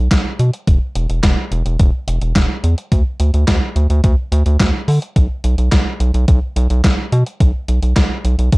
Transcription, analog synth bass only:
0.11 B1
0.39 B2
0.67 E1
0.95 E1
1.09 E1
1.23 E1
1.52 E1
1.66 E1
1.80 E1
2.08 E1
2.22 E1
2.36 E1
2.64 E2
2.92 D2
3.20 D2
3.34 D2
3.48 D2
3.76 D2
3.90 D2
4.04 D2
4.32 D2
4.46 D2
4.60 D2
4.88 D3
5.16 B1
5.44 B1
5.58 B1
5.72 B1
6.00 B1
6.14 B1
6.28 B1
6.56 B1
6.70 B1
6.84 B1
7.12 B2
7.40 B1
7.68 B1
7.82 B1
7.96 B1
8.24 B1
8.39 B1
8.53 B1

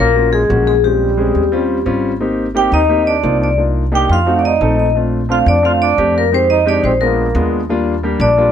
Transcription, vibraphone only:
0.00 A#4
0.33 G#4
0.67 G#4
0.84 G4
2.57 G5
2.74 D#5
3.07 D5
3.44 D5
3.95 G5
4.13 F5
4.39 D5
4.45 D#5
4.79 D#5
5.32 F5
5.48 D5
5.65 F5
5.82 D5
6.18 A#4
6.34 C5
6.50 D#5
6.68 D5
6.85 C5
7.01 A#4
8.21 D5

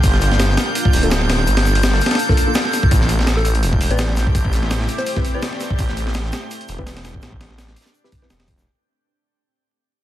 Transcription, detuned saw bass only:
0.04 G1
0.94 D1
1.48 G1
2.91 A1
3.63 E1
3.91 A1
4.35 A1
5.79 A1
6.69 E1
7.22 A1
8.30 E1

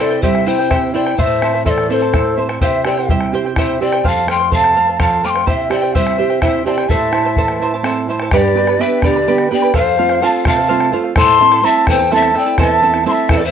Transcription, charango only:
0.00 E4 C5 E5 G5
0.11 E4 C5 G5
0.23 E4 G4 C5 E5 G5
0.46 E4 C5 E5 G5
0.59 E4 C5 G5
0.70 E4 G4 C5 E5 G5
0.94 E4 C5 E5 G5
1.06 E4 C5 G5
1.18 E4 A4 C5 E5 A5
1.42 E4 C5 E5 A5
1.54 E4 C5 A5
1.65 E4 A4 C5 E5 A5
1.89 E4 C5 E5 A5
2.02 E4 C5 A5
2.13 E4 A4 C5 E5 A5
2.37 E4 C5 E5 A5
2.49 E4 C5 A5
2.61 E4 G4 C5 E5 G5
2.85 E4 C5 E5 G5
2.98 E4 C5 G5
3.10 E4 G4 C5 E5 G5
3.33 E4 C5 E5 G5
3.46 E4 C5 G5
3.57 E4 G4 C5 E5 G5
3.81 E4 C5 E5 G5
3.93 E4 C5 G5
4.04 A4 C5 F5
4.28 A4 C5 F5
4.39 C5 F5
4.51 A4 C5 F5
4.76 A4 C5 F5
4.87 C5 F5
4.99 A4 C5 F5
5.23 A4 C5 F5
5.35 C5 F5
5.46 E4 G4 C5 E5 G5
5.70 E4 C5 E5 G5
5.82 E4 C5 G5
5.95 E4 G4 C5 E5 G5
6.18 E4 C5 E5 G5
6.30 E4 C5 G5
6.42 E4 G4 C5 E5 G5
6.66 E4 C5 E5 G5
6.78 E4 C5 G5
6.90 E4 A4 C5 E5 A5
7.13 E4 C5 E5 A5
7.25 E4 C5 A5
7.37 E4 A4 C5 E5 A5
7.61 E4 C5 E5 A5
7.74 E4 C5 A5
7.85 E4 A4 C5 E5 A5
8.09 E4 C5 E5 A5
8.22 E4 C5 A5
8.33 G4 B4 D5 G5 B5
8.57 B4 D5 G5 B5
8.68 B4 D5 B5
8.80 G4 B4 D5 G5 B5
9.03 B4 D5 G5 B5
9.16 B4 D5 B5
9.28 G4 B4 D5 G5 B5
9.51 B4 D5 G5 B5
9.62 B4 D5 B5
9.74 A4 C5 F5
9.97 A4 C5 F5
10.10 C5 F5
10.22 A4 C5 F5
10.46 A4 C5 F5
10.57 C5 F5
10.68 A4 C5 F5
10.92 A4 C5 F5
11.04 C5 F5
11.16 E4 A4 C5 E5 A5
11.40 E4 A4 E5 A5
11.52 E4 A4 A5
11.63 E4 A4 C5 E5 A5
11.87 E4 A4 E5 A5
12.00 E4 A4 A5
12.11 E4 A4 C5 E5 A5
12.34 E4 A4 E5 A5
12.46 E4 A4 A5
12.58 E4 A4 C5 E5 A5
12.82 E4 A4 E5 A5
12.94 E4 A4 A5
13.06 E4 A4 C5 E5 A5
13.29 E4 A4 E5 A5
13.41 E4 A4 A5

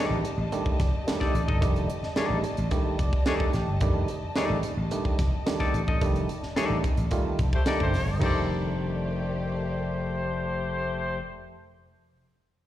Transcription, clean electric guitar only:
Already playing: D#4 A4 D5
1.20 D#4 A4 D5
1.48 D#4 A4 D#5
2.17 D#4 A4 D5
3.26 D#4 A4 D5
4.36 D#4 A4 D5
5.60 D#4 A4 D5
5.88 D#4 A4 D#5
6.56 D#4 A4 D5
7.67 D#4 A4 D5
8.21 D#4 A4
8.26 D5

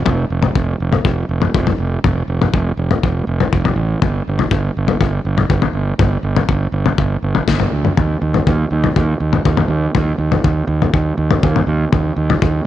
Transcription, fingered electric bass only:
0.06 F1
0.30 F1
0.55 F1
0.80 F1
1.04 F1
1.29 F1
1.54 F1
1.78 F1
2.04 F1
2.28 F1
2.53 F1
2.77 F1
3.03 F1
3.27 F1
3.53 F1
3.76 A1
4.02 G1
4.27 G1
4.50 G1
4.77 G1
5.01 G1
5.25 G1
5.50 G1
5.73 G1
5.99 G1
6.23 G1
6.49 G1
6.72 G1
6.98 G1
7.22 G1
7.48 G1
7.72 D2
7.97 D#2
8.22 D#2
8.47 D#2
8.71 D#2
8.96 D#2
9.20 D#2
9.45 D#2
9.68 D#2
9.95 D#2
10.18 D#2
10.44 D#2
10.67 D#2
10.93 D#2
11.18 D#2
11.43 D#2
11.67 D#2
11.92 D#2
12.16 D#2
12.42 D#2

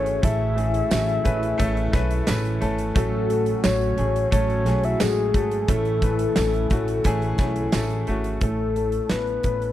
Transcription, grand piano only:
Already playing: A3 C#4 E4 F#4 G#4 A4
0.22 A2 A3 C#4 E4 A4
0.55 A3 C#4 E4 G#4
0.89 A3 C#4 E4 F#4
1.24 A3 C#4 E4 B4
1.58 A3 C#4 E4 A4
1.92 A3 C#4 E4 B4
2.27 A3 C#4 E4 B4
2.61 A3 C#4 E4 A4
2.94 A2 A3 C#4 F#4 A4
3.29 A3 C#4 F#4 A4
3.63 A3 C#4 F#4 A4
3.97 A3 C#4 F#4 G#4
4.31 A3 C#4 F#4 A4
4.66 A3 C#4 F#4 G#4
5.00 A3 C#4 F#4 A4
5.34 A3 C#4 F#4 A4
5.69 A2 A3 C#4 E4 A4
6.02 A3 C#4 E4 B4
6.36 A3 C#4 E4 A4
6.70 A3 C#4 E4 F#4
7.04 A3 C#4 E4 G#4
7.39 A3 C#4 E4 G#4
7.74 A3 C#4 E4 A4
8.07 A3 C#4 E4 F#4
8.41 A2 A3 C#4 E4 A4
8.75 A3 C#4 E4 A4
9.09 A3 C#4 E4 B4
9.44 A3 C#4 E4 B4

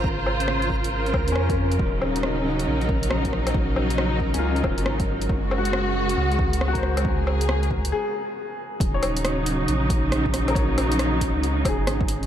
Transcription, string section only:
Already playing: C#3 F4 C5
1.79 F#3 D#4
5.30 G#3 F#4
7.05 G#4
8.80 C#3 F#3 D#4

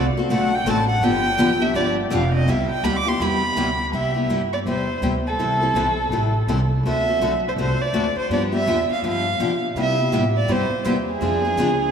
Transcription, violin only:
0.30 F#5
0.55 G5
0.69 A5
0.89 F#5
1.04 G5
1.62 E5
1.76 D5
2.14 F5
2.34 D#5
2.49 E5
2.70 G5
2.83 B5
2.97 D6
3.08 C6
3.21 B5
3.95 E5
4.53 D5
4.67 C5
5.27 A4
6.87 E5
7.48 C5
7.61 C5
7.82 D5
8.19 C5
8.33 D5
8.54 E5
8.92 F5
9.07 F5
9.81 E5
10.37 D5
10.52 C5
11.10 G#4

